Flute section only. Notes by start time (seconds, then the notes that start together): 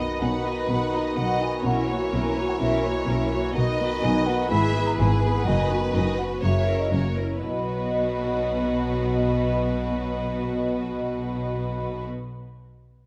0.20 G#5
0.45 F#5
0.70 B5
0.94 A#5
1.18 F#5
1.42 G#5
1.65 F#5
2.01 E5
2.12 G#5
2.49 F#5
2.61 E5
2.97 D#5
3.07 E5
3.44 F#5
4.02 G#5
4.26 F#5
4.50 B5
4.87 A#5
4.98 G#5
5.35 F#5
5.47 G#5
6.18 F#5
6.42 E5
6.80 D#5
6.92 C#5
7.42 D#5